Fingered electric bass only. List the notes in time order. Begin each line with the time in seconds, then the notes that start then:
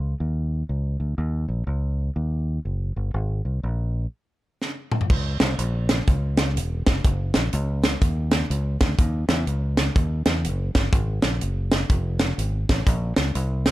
Already playing: C#2
0.20 D#2
0.69 C#2
1.00 D2
1.18 D#2
1.48 A#1
1.67 C#2
2.16 D#2
2.65 F#1
2.96 G1
3.14 G#1
3.45 C2
3.63 A#1
5.10 C#2
5.40 C2
5.58 A#1
6.08 C#2
6.56 E1
6.87 F1
7.04 F#1
7.35 A#1
7.53 C#2
8.01 D#2
8.50 C#2
8.81 D2
8.99 D#2
9.29 E2
9.47 C#2
9.96 D#2
10.26 E2
10.45 F#1
10.75 G1
10.93 G#1
11.23 A#1
11.42 F#1
11.90 F1
12.38 G#1
12.69 A1
12.87 A#1
13.17 C#2
13.35 C2